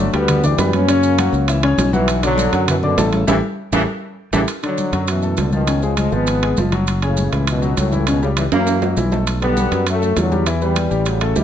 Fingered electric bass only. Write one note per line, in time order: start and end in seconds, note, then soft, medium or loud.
0.13 0.55 D2 medium
0.58 1.28 F#2 medium
1.33 1.75 C#2 medium
1.78 2.47 B1 medium
2.52 2.94 F#2 medium
2.98 3.26 A1 loud
3.28 3.39 A1 loud
3.72 3.84 A1 medium
4.33 4.44 A1 loud
4.92 5.34 F#2 medium
5.38 6.07 C#2 medium
6.12 6.54 G#1 medium
6.57 7.27 F#1 medium
7.32 7.74 C#2 medium
7.77 8.47 C#2 medium
8.52 8.94 F#2 medium
8.97 9.66 B1 medium
9.71 10.13 F#2 medium
10.16 10.86 E2 medium
10.91 11.33 A1 medium
11.36 11.44 D2 medium